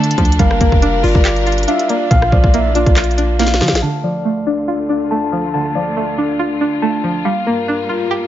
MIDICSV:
0, 0, Header, 1, 7, 480
1, 0, Start_track
1, 0, Key_signature, -1, "minor"
1, 0, Tempo, 428571
1, 441, Time_signature, 4, 2, 24, 8
1, 9262, End_track
2, 0, Start_track
2, 0, Title_t, "Soft synth lead"
2, 0, Program_c, 0, 80
2, 439, Note_on_c, 0, 70, 116
2, 892, Note_off_c, 0, 70, 0
2, 921, Note_on_c, 0, 77, 80
2, 1149, Note_off_c, 0, 77, 0
2, 1164, Note_on_c, 0, 74, 88
2, 1840, Note_off_c, 0, 74, 0
2, 1881, Note_on_c, 0, 76, 93
2, 2109, Note_off_c, 0, 76, 0
2, 2123, Note_on_c, 0, 74, 84
2, 2350, Note_off_c, 0, 74, 0
2, 2358, Note_on_c, 0, 77, 118
2, 2811, Note_off_c, 0, 77, 0
2, 2841, Note_on_c, 0, 76, 90
2, 3069, Note_off_c, 0, 76, 0
2, 3082, Note_on_c, 0, 74, 91
2, 3309, Note_off_c, 0, 74, 0
2, 9262, End_track
3, 0, Start_track
3, 0, Title_t, "Tine electric piano"
3, 0, Program_c, 1, 4
3, 0, Note_on_c, 1, 62, 91
3, 0, Note_on_c, 1, 74, 89
3, 0, Note_on_c, 1, 81, 108
3, 201, Note_off_c, 1, 74, 0
3, 441, Note_off_c, 1, 81, 0
3, 441, Note_on_c, 1, 77, 106
3, 442, Note_off_c, 1, 62, 0
3, 681, Note_on_c, 1, 70, 91
3, 1161, Note_on_c, 1, 65, 96
3, 1869, Note_off_c, 1, 77, 0
3, 1882, Note_on_c, 1, 77, 96
3, 2121, Note_off_c, 1, 70, 0
3, 2348, Note_off_c, 1, 77, 0
3, 2361, Note_off_c, 1, 65, 0
3, 2361, Note_on_c, 1, 77, 96
3, 2602, Note_on_c, 1, 74, 82
3, 3082, Note_on_c, 1, 65, 101
3, 3789, Note_off_c, 1, 77, 0
3, 3802, Note_on_c, 1, 77, 99
3, 4042, Note_off_c, 1, 74, 0
3, 4281, Note_on_c, 1, 81, 98
3, 4282, Note_off_c, 1, 65, 0
3, 4282, Note_off_c, 1, 77, 0
3, 4522, Note_on_c, 1, 74, 82
3, 5002, Note_on_c, 1, 62, 89
3, 5708, Note_off_c, 1, 81, 0
3, 5722, Note_on_c, 1, 81, 106
3, 5962, Note_off_c, 1, 74, 0
3, 6189, Note_off_c, 1, 81, 0
3, 6203, Note_on_c, 1, 81, 93
3, 6442, Note_off_c, 1, 62, 0
3, 6443, Note_on_c, 1, 74, 83
3, 6924, Note_on_c, 1, 62, 87
3, 7628, Note_off_c, 1, 81, 0
3, 7642, Note_on_c, 1, 81, 99
3, 7882, Note_off_c, 1, 74, 0
3, 8122, Note_off_c, 1, 62, 0
3, 8122, Note_off_c, 1, 81, 0
3, 8122, Note_on_c, 1, 77, 100
3, 8362, Note_on_c, 1, 70, 86
3, 8843, Note_on_c, 1, 65, 90
3, 9262, Note_off_c, 1, 65, 0
3, 9262, Note_off_c, 1, 70, 0
3, 9262, Note_off_c, 1, 77, 0
3, 9262, End_track
4, 0, Start_track
4, 0, Title_t, "String section"
4, 0, Program_c, 2, 48
4, 0, Note_on_c, 2, 50, 84
4, 0, Note_on_c, 2, 62, 74
4, 0, Note_on_c, 2, 65, 75
4, 0, Note_on_c, 2, 69, 90
4, 396, Note_off_c, 2, 65, 0
4, 402, Note_off_c, 2, 50, 0
4, 402, Note_off_c, 2, 69, 0
4, 441, Note_on_c, 2, 55, 83
4, 441, Note_on_c, 2, 65, 74
4, 441, Note_on_c, 2, 70, 87
4, 2342, Note_off_c, 2, 55, 0
4, 2342, Note_off_c, 2, 70, 0
4, 2361, Note_on_c, 2, 58, 85
4, 4236, Note_off_c, 2, 62, 0
4, 4243, Note_off_c, 2, 65, 0
4, 4262, Note_off_c, 2, 58, 0
4, 4281, Note_on_c, 2, 38, 78
4, 4282, Note_on_c, 2, 50, 71
4, 4282, Note_on_c, 2, 57, 72
4, 4282, Note_on_c, 2, 65, 87
4, 8083, Note_off_c, 2, 38, 0
4, 8083, Note_off_c, 2, 50, 0
4, 8083, Note_off_c, 2, 57, 0
4, 8122, Note_on_c, 2, 43, 79
4, 8122, Note_on_c, 2, 55, 73
4, 8122, Note_on_c, 2, 58, 73
4, 9262, Note_off_c, 2, 43, 0
4, 9262, Note_off_c, 2, 55, 0
4, 9262, Note_off_c, 2, 58, 0
4, 9262, Note_off_c, 2, 65, 0
4, 9262, End_track
5, 0, Start_track
5, 0, Title_t, "Synth pluck"
5, 0, Program_c, 3, 84
5, 0, Note_on_c, 3, 57, 86
5, 0, Note_on_c, 3, 62, 90
5, 0, Note_on_c, 3, 65, 102
5, 200, Note_on_c, 3, 53, 86
5, 436, Note_on_c, 3, 55, 90
5, 439, Note_off_c, 3, 65, 0
5, 440, Note_off_c, 3, 53, 0
5, 440, Note_off_c, 3, 57, 0
5, 440, Note_off_c, 3, 62, 0
5, 680, Note_on_c, 3, 58, 84
5, 922, Note_on_c, 3, 62, 94
5, 1156, Note_on_c, 3, 65, 82
5, 1396, Note_on_c, 3, 67, 104
5, 1629, Note_off_c, 3, 65, 0
5, 1639, Note_off_c, 3, 55, 0
5, 1643, Note_on_c, 3, 65, 87
5, 1863, Note_off_c, 3, 62, 0
5, 1876, Note_on_c, 3, 62, 90
5, 1880, Note_off_c, 3, 58, 0
5, 2124, Note_on_c, 3, 58, 82
5, 2359, Note_off_c, 3, 62, 0
5, 2359, Note_off_c, 3, 67, 0
5, 2362, Note_off_c, 3, 58, 0
5, 2362, Note_off_c, 3, 65, 0
5, 2362, Note_on_c, 3, 46, 99
5, 2598, Note_on_c, 3, 53, 81
5, 2843, Note_on_c, 3, 58, 89
5, 3086, Note_on_c, 3, 62, 87
5, 3328, Note_on_c, 3, 65, 94
5, 3544, Note_off_c, 3, 62, 0
5, 3558, Note_on_c, 3, 62, 86
5, 3561, Note_off_c, 3, 46, 0
5, 3788, Note_off_c, 3, 58, 0
5, 3799, Note_off_c, 3, 53, 0
5, 3802, Note_on_c, 3, 58, 86
5, 4043, Note_on_c, 3, 53, 81
5, 4280, Note_off_c, 3, 62, 0
5, 4282, Note_off_c, 3, 53, 0
5, 4282, Note_off_c, 3, 58, 0
5, 4284, Note_on_c, 3, 50, 87
5, 4285, Note_off_c, 3, 65, 0
5, 4519, Note_on_c, 3, 53, 75
5, 4760, Note_on_c, 3, 57, 85
5, 5003, Note_on_c, 3, 62, 83
5, 5240, Note_on_c, 3, 65, 98
5, 5466, Note_off_c, 3, 62, 0
5, 5479, Note_on_c, 3, 62, 89
5, 5483, Note_off_c, 3, 50, 0
5, 5711, Note_off_c, 3, 57, 0
5, 5720, Note_off_c, 3, 53, 0
5, 5725, Note_on_c, 3, 57, 89
5, 5963, Note_on_c, 3, 53, 78
5, 6204, Note_on_c, 3, 50, 93
5, 6431, Note_off_c, 3, 53, 0
5, 6441, Note_off_c, 3, 65, 0
5, 6445, Note_on_c, 3, 53, 77
5, 6671, Note_off_c, 3, 57, 0
5, 6680, Note_off_c, 3, 62, 0
5, 6684, Note_on_c, 3, 57, 86
5, 6923, Note_on_c, 3, 62, 83
5, 7161, Note_on_c, 3, 65, 98
5, 7388, Note_off_c, 3, 62, 0
5, 7401, Note_on_c, 3, 62, 87
5, 7403, Note_off_c, 3, 50, 0
5, 7629, Note_off_c, 3, 57, 0
5, 7643, Note_off_c, 3, 53, 0
5, 7643, Note_on_c, 3, 57, 85
5, 7883, Note_on_c, 3, 53, 87
5, 8120, Note_on_c, 3, 55, 92
5, 8121, Note_off_c, 3, 62, 0
5, 8121, Note_off_c, 3, 65, 0
5, 8122, Note_off_c, 3, 53, 0
5, 8122, Note_off_c, 3, 57, 0
5, 8364, Note_on_c, 3, 58, 79
5, 8604, Note_on_c, 3, 62, 89
5, 8839, Note_on_c, 3, 65, 79
5, 9080, Note_on_c, 3, 67, 101
5, 9262, Note_off_c, 3, 55, 0
5, 9262, Note_off_c, 3, 58, 0
5, 9262, Note_off_c, 3, 62, 0
5, 9262, Note_off_c, 3, 65, 0
5, 9262, Note_off_c, 3, 67, 0
5, 9262, End_track
6, 0, Start_track
6, 0, Title_t, "808-style bass"
6, 0, Program_c, 4, 38
6, 0, Note_on_c, 4, 50, 103
6, 167, Note_off_c, 4, 50, 0
6, 200, Note_on_c, 4, 38, 108
6, 431, Note_off_c, 4, 38, 0
6, 440, Note_on_c, 4, 31, 114
6, 671, Note_off_c, 4, 31, 0
6, 681, Note_on_c, 4, 31, 107
6, 803, Note_off_c, 4, 31, 0
6, 808, Note_on_c, 4, 29, 108
6, 1147, Note_off_c, 4, 29, 0
6, 1160, Note_on_c, 4, 31, 104
6, 1280, Note_off_c, 4, 31, 0
6, 1287, Note_on_c, 4, 31, 102
6, 1857, Note_off_c, 4, 31, 0
6, 2362, Note_on_c, 4, 34, 118
6, 2592, Note_off_c, 4, 34, 0
6, 2602, Note_on_c, 4, 34, 105
6, 2724, Note_off_c, 4, 34, 0
6, 2730, Note_on_c, 4, 34, 104
6, 3190, Note_off_c, 4, 34, 0
6, 3208, Note_on_c, 4, 34, 107
6, 4042, Note_on_c, 4, 50, 99
6, 4059, Note_off_c, 4, 34, 0
6, 4170, Note_on_c, 4, 34, 101
6, 4187, Note_off_c, 4, 50, 0
6, 4277, Note_off_c, 4, 34, 0
6, 9262, End_track
7, 0, Start_track
7, 0, Title_t, "Drums"
7, 40, Note_on_c, 9, 42, 73
7, 121, Note_off_c, 9, 42, 0
7, 121, Note_on_c, 9, 42, 94
7, 200, Note_off_c, 9, 42, 0
7, 200, Note_on_c, 9, 42, 50
7, 201, Note_on_c, 9, 36, 101
7, 280, Note_off_c, 9, 42, 0
7, 280, Note_on_c, 9, 42, 68
7, 313, Note_off_c, 9, 36, 0
7, 361, Note_off_c, 9, 42, 0
7, 361, Note_on_c, 9, 42, 83
7, 440, Note_off_c, 9, 42, 0
7, 440, Note_on_c, 9, 42, 84
7, 441, Note_on_c, 9, 36, 108
7, 552, Note_off_c, 9, 42, 0
7, 553, Note_off_c, 9, 36, 0
7, 568, Note_on_c, 9, 37, 97
7, 679, Note_on_c, 9, 42, 78
7, 680, Note_off_c, 9, 37, 0
7, 681, Note_on_c, 9, 36, 97
7, 791, Note_off_c, 9, 42, 0
7, 793, Note_off_c, 9, 36, 0
7, 809, Note_on_c, 9, 36, 106
7, 921, Note_off_c, 9, 36, 0
7, 922, Note_on_c, 9, 42, 81
7, 1034, Note_off_c, 9, 42, 0
7, 1163, Note_on_c, 9, 46, 58
7, 1275, Note_off_c, 9, 46, 0
7, 1287, Note_on_c, 9, 36, 105
7, 1399, Note_off_c, 9, 36, 0
7, 1400, Note_on_c, 9, 39, 125
7, 1401, Note_on_c, 9, 42, 66
7, 1512, Note_off_c, 9, 39, 0
7, 1513, Note_off_c, 9, 42, 0
7, 1529, Note_on_c, 9, 42, 64
7, 1641, Note_off_c, 9, 42, 0
7, 1642, Note_on_c, 9, 42, 45
7, 1705, Note_off_c, 9, 42, 0
7, 1705, Note_on_c, 9, 42, 57
7, 1770, Note_off_c, 9, 42, 0
7, 1770, Note_on_c, 9, 42, 66
7, 1826, Note_off_c, 9, 42, 0
7, 1826, Note_on_c, 9, 42, 77
7, 1882, Note_off_c, 9, 42, 0
7, 1882, Note_on_c, 9, 42, 79
7, 1994, Note_off_c, 9, 42, 0
7, 2010, Note_on_c, 9, 42, 76
7, 2121, Note_off_c, 9, 42, 0
7, 2121, Note_on_c, 9, 42, 81
7, 2233, Note_off_c, 9, 42, 0
7, 2362, Note_on_c, 9, 36, 108
7, 2362, Note_on_c, 9, 42, 83
7, 2474, Note_off_c, 9, 36, 0
7, 2474, Note_off_c, 9, 42, 0
7, 2489, Note_on_c, 9, 37, 98
7, 2601, Note_off_c, 9, 37, 0
7, 2602, Note_on_c, 9, 36, 100
7, 2714, Note_off_c, 9, 36, 0
7, 2729, Note_on_c, 9, 36, 109
7, 2841, Note_off_c, 9, 36, 0
7, 2843, Note_on_c, 9, 42, 76
7, 2955, Note_off_c, 9, 42, 0
7, 3081, Note_on_c, 9, 42, 78
7, 3193, Note_off_c, 9, 42, 0
7, 3208, Note_on_c, 9, 36, 104
7, 3209, Note_on_c, 9, 42, 47
7, 3320, Note_off_c, 9, 36, 0
7, 3321, Note_off_c, 9, 42, 0
7, 3321, Note_on_c, 9, 37, 75
7, 3321, Note_on_c, 9, 39, 125
7, 3321, Note_on_c, 9, 42, 78
7, 3402, Note_off_c, 9, 42, 0
7, 3402, Note_on_c, 9, 42, 61
7, 3433, Note_off_c, 9, 37, 0
7, 3433, Note_off_c, 9, 39, 0
7, 3482, Note_off_c, 9, 42, 0
7, 3482, Note_on_c, 9, 42, 46
7, 3562, Note_off_c, 9, 42, 0
7, 3562, Note_on_c, 9, 42, 80
7, 3674, Note_off_c, 9, 42, 0
7, 3801, Note_on_c, 9, 38, 67
7, 3801, Note_on_c, 9, 42, 94
7, 3882, Note_off_c, 9, 38, 0
7, 3882, Note_off_c, 9, 42, 0
7, 3882, Note_on_c, 9, 38, 65
7, 3882, Note_on_c, 9, 42, 74
7, 3962, Note_off_c, 9, 38, 0
7, 3962, Note_off_c, 9, 42, 0
7, 3962, Note_on_c, 9, 38, 88
7, 3962, Note_on_c, 9, 42, 55
7, 4042, Note_off_c, 9, 38, 0
7, 4042, Note_off_c, 9, 42, 0
7, 4042, Note_on_c, 9, 38, 81
7, 4042, Note_on_c, 9, 42, 49
7, 4122, Note_off_c, 9, 38, 0
7, 4122, Note_off_c, 9, 42, 0
7, 4122, Note_on_c, 9, 38, 105
7, 4122, Note_on_c, 9, 42, 66
7, 4202, Note_off_c, 9, 38, 0
7, 4202, Note_off_c, 9, 42, 0
7, 4202, Note_on_c, 9, 38, 102
7, 4202, Note_on_c, 9, 42, 84
7, 4314, Note_off_c, 9, 38, 0
7, 4314, Note_off_c, 9, 42, 0
7, 9262, End_track
0, 0, End_of_file